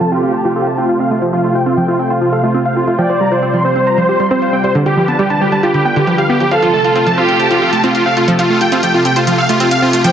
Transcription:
Already playing: C3 A3 F4 C5
0.01 F3 A5, closed hi-hat
0.12 C4 F4 G4
0.23 C4 F4, closed hi-hat
0.34 C5 A5, closed hi-hat
0.45 F3 F4, closed hi-hat
0.56 F4 A4
0.67 A3 A5, closed hi-hat
0.78 C4 F4, closed hi-hat
0.89 F4 F5, closed hi-hat
1.00 C4 F5
1.11 A3 F4, closed hi-hat
1.22 F3, closed hi-hat
1.33 F3 F4, closed hi-hat
1.44 A3 F4
1.55 F4 G5, closed hi-hat
1.66 C4 F4, closed hi-hat
1.77 F3 G5, closed hi-hat
1.88 C4 F4
1.99 C4 G5, closed hi-hat
2.10 F4 C5, closed hi-hat
2.21 F3 F4, closed hi-hat
2.32 A4 F5
2.43 A3 F4, closed hi-hat
2.54 C4 F4, closed hi-hat
2.65 F5, closed hi-hat
2.76 C4 F4
2.87 A3 F4, closed hi-hat
2.98 F3 G3 D5 G5, closed hi-hat
3.09 F3 C5, closed hi-hat
3.21 G3 A#5
3.31 F4 C5, closed hi-hat
3.43 C4 C5, closed hi-hat
3.54 F3 C6, closed hi-hat
3.65 C4 C5
3.76 C4 C5, closed hi-hat
3.87 C5 A#5, closed hi-hat
3.98 F3 C5, closed hi-hat
4.09 G4 C5
4.20 G3 C6, closed hi-hat
4.31 C4 C5, closed hi-hat
4.42 C5 F5, closed hi-hat
4.53 C4 G5
4.64 G3 C5, closed hi-hat
4.75 D3 B4, closed hi-hat
4.86 D3 G4, closed hi-hat
4.97 F3 G4
5.08 B3 A5, closed hi-hat
5.19 G3 G4, closed hi-hat
5.30 D3 A5, closed hi-hat
5.41 G3 G4
5.52 G3 A5, closed hi-hat
5.63 F4 G4, closed hi-hat
5.74 D3 G4, closed hi-hat
5.85 B3 G5
5.96 D3 G4, closed hi-hat
6.07 F3 G4, closed hi-hat
6.18 G4 F5, closed hi-hat
6.29 B3 G4
6.40 F3 G4, closed hi-hat
6.51 C3 F3 A3 F4 A4 F5, closed hi-hat
6.62 F3 F4, closed hi-hat
6.73 A3 A5
6.84 F4, closed hi-hat
6.96 C4 F4, closed hi-hat
7.07 F3 A5, closed hi-hat
7.18 C4 F4 G4
7.29 C4 F4, closed hi-hat
7.40 C5 A5, closed hi-hat
7.51 F3 F4, closed hi-hat
7.62 F4 A4
7.73 A3 A5, closed hi-hat
7.84 C4 F4, closed hi-hat
7.95 F4 F5, closed hi-hat
8.06 C4 F5
8.17 A3 F4, closed hi-hat
8.28 F3 G4, closed hi-hat
8.39 F3 F4, closed hi-hat
8.50 A3 F4
8.61 F4 G5, closed hi-hat
8.72 C4 F4, closed hi-hat
8.83 F3 G5, closed hi-hat
8.94 C4 F4
9.05 C4 G5, closed hi-hat
9.16 F4 C5, closed hi-hat
9.27 F3 F4, closed hi-hat
9.38 A4 F5
9.49 A3 F4, closed hi-hat
9.60 C4 F4, closed hi-hat
9.71 F5, closed hi-hat
9.82 C4 F4
9.93 A3 F4, closed hi-hat
10.04 F3 G3 F4 C5 G5, closed hi-hat

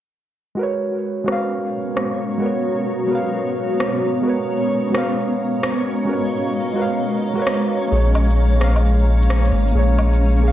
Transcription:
0.55 G#3 F#4
0.59 C#4 A#4 B4 C#5
0.82 B3
0.96 F#4
1.24 G#3 F#4 A#4, cross-stick
1.30 B4 F5 A#5
1.56 C#5
1.97 cross-stick
2.38 G#3 F#4 A#4
2.44 B4 C#5
3.07 G#3 F#4 A#4
3.13 B4 F5
3.80 cross-stick
4.21 G#3 F#4
4.26 A#4 B4 C#5
4.90 G#3 F#4
4.94 A#4 B4 F5, cross-stick
5.02 D#5
5.12 F5
5.63 cross-stick
6.05 G#3 F#4
6.09 A#4 B4 C#5
6.73 G#3 F#4 A#4
6.79 B4 F5
7.34 G#3 F#4 A#4
7.39 B4 C#5
7.47 cross-stick
7.87 A#3
7.91 A#1 G#4 C#5
8.15 C#4, low woodblock
8.30 shaker
8.37 C#5
8.53 A#3, shaker
8.60 G#4 F5, cross-stick
8.76 low woodblock, shaker
8.99 shaker
9.22 shaker
9.30 cross-stick
9.45 shaker
9.52 G#1
9.68 A#3, shaker
9.75 A#1 G#4
9.79 C#5
9.99 low woodblock
10.13 shaker
10.36 A#3, shaker
10.44 G#4
10.48 F5

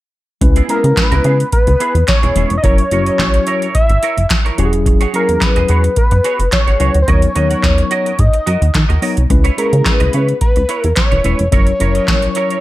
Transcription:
0.41 C#2 G#3 C#4 E4 B4, muted clean electric guitar stroke, kick, closed hi-hat
0.56 B3 E4 G#4, closed hi-hat
0.69 G#3 B3 C#4 E4 G#4 A#4 B4, closed hi-hat
0.84 C#3, muted clean electric guitar stroke, closed hi-hat
0.97 B4, muted clean electric guitar stroke, kick, snare, clap, closed hi-hat
1.11 C#2 B3 E4 A#4, closed hi-hat
1.24 C#3 B3 E4 G#4, closed hi-hat
1.39 muted clean electric guitar stroke, closed hi-hat
1.52 B4, kick, closed hi-hat
1.67 C#2, muted clean electric guitar stroke, closed hi-hat
1.80 B3 E4 G#4, closed hi-hat
1.95 E2, muted clean electric guitar stroke, closed hi-hat
2.08 C#5, muted clean electric guitar stroke, kick, snare, clap, closed hi-hat
2.23 E1 B3 E4 G#4, closed hi-hat
2.36 E1 G#3 B3 C#4 E4 G#4 C#5, closed hi-hat
2.50 F1, muted clean electric guitar stroke, closed hi-hat
2.58 D#5
2.63 F#1 F#3 C#4 E4 A#4 C#5, kick, closed hi-hat
2.78 muted clean electric guitar stroke, closed hi-hat
2.91 F#1 F#3 C#4 E4 F#4 A#4 C#5, closed hi-hat
3.06 E4 A#4 D#5, closed hi-hat
3.19 A#1, kick, snare, clap, closed hi-hat
3.34 muted clean electric guitar stroke, closed hi-hat
3.47 E4 A#4 C#5, closed hi-hat
3.62 E4 A#4 C#5, closed hi-hat
3.75 E5, kick, closed hi-hat
3.90 G#1, muted clean electric guitar stroke, closed hi-hat
4.03 E4 A#4 C#5, closed hi-hat
4.17 F#1, muted clean electric guitar stroke, closed hi-hat
4.30 muted clean electric guitar stroke, kick, snare, clap, closed hi-hat
4.45 E4 A#4 C#5, closed hi-hat
4.58 E1 F#3 C#4 E4 F#4 G4 G#4 C#5, closed hi-hat
4.65 G#4
4.73 muted clean electric guitar stroke, closed hi-hat
4.86 muted clean electric guitar stroke, kick, closed hi-hat
5.01 F#4 G#4 C#5, closed hi-hat
5.14 F#3 C#4 E4 F#4 G#4 A#4 C#5, closed hi-hat
5.29 E2, closed hi-hat
5.41 B4, muted clean electric guitar stroke, kick, snare, clap, closed hi-hat
5.56 E1 F#4 G#4 D#5, closed hi-hat
5.68 E2 F#4 G#4 C#5, closed hi-hat
5.84 muted clean electric guitar stroke, closed hi-hat
5.96 B4, kick, closed hi-hat
6.11 F#2, muted clean electric guitar stroke, closed hi-hat
6.24 F#4 G#4 C#5, closed hi-hat
6.39 F#1, muted clean electric guitar stroke, closed hi-hat
6.52 C#5, muted clean electric guitar stroke, kick, snare, clap, closed hi-hat
6.67 G#1 F#4 G#4 C#5, closed hi-hat
6.79 C#2 F#3 C#4 E4 F#4 G#4 B4 C#5, closed hi-hat
6.94 D2, muted clean electric guitar stroke, closed hi-hat
7.02 C5
7.08 D#2 F#3 B3 D#4 F#4 A#4 C#5 D#5, kick, closed hi-hat
7.22 muted clean electric guitar stroke, closed hi-hat
7.35 D#2 F#3 B3 D#4 F#4 A#4 D#5, closed hi-hat
7.50 F#4 A#4 F#5, closed hi-hat
7.64 D#2, kick, snare, clap, closed hi-hat
7.78 muted clean electric guitar stroke, closed hi-hat
7.91 F#4 A#4 D#5, closed hi-hat
8.05 F#4 A#4 D#5, closed hi-hat
8.19 G#2 D#5, muted clean electric guitar stroke, kick, closed hi-hat
8.33 muted clean electric guitar stroke, closed hi-hat
8.46 F#2 F#4 A#4 D#5, closed hi-hat
8.61 D#2, muted clean electric guitar stroke, closed hi-hat
8.74 D#3, muted clean electric guitar stroke, kick, snare, clap, closed hi-hat
8.89 D#2 F#4 A#4 D#5, closed hi-hat
9.01 F#3 B3 D#4 F#4 A#4 C#5 D#5, open hi-hat
9.17 C2, muted clean electric guitar stroke, closed hi-hat
9.30 C#2 G#3 C#4 E4 B4, muted clean electric guitar stroke, kick, closed hi-hat
9.44 E4 B4 C#5, closed hi-hat
9.57 G#3 C#4 E4 G#4 A#4 B4 C#5, closed hi-hat
9.73 C#3, muted clean electric guitar stroke, closed hi-hat
9.85 B4, muted clean electric guitar stroke, kick, snare, clap, closed hi-hat
10.00 C#2 E4 B4 D#5, closed hi-hat
10.13 C#3 E4 B4 C#5, closed hi-hat
10.28 muted clean electric guitar stroke, closed hi-hat
10.41 B4, kick, closed hi-hat
10.56 C#2, muted clean electric guitar stroke, closed hi-hat
10.69 E4 B4 C#5, closed hi-hat
10.79 A#4
10.84 E2, muted clean electric guitar stroke, closed hi-hat
10.96 C#5, muted clean electric guitar stroke, kick, snare, clap, closed hi-hat
11.11 E1 E4 B4 C#5, closed hi-hat
11.24 E1 G#3 C#4 E4 B4 C#5, closed hi-hat
11.39 F1, muted clean electric guitar stroke, closed hi-hat
11.51 F#1 F#3 C#4 E4 A#4 C#5, kick, closed hi-hat
11.67 muted clean electric guitar stroke, closed hi-hat
11.80 F#1 F#3 C#4 E4 A#4 C#5, closed hi-hat
11.95 E4 A#4 D#5, closed hi-hat
12.08 A#1, kick, snare, clap, closed hi-hat
12.22 muted clean electric guitar stroke, closed hi-hat
12.35 E4 A#4 C#5, closed hi-hat
12.50 E4 A#4 C#5, closed hi-hat

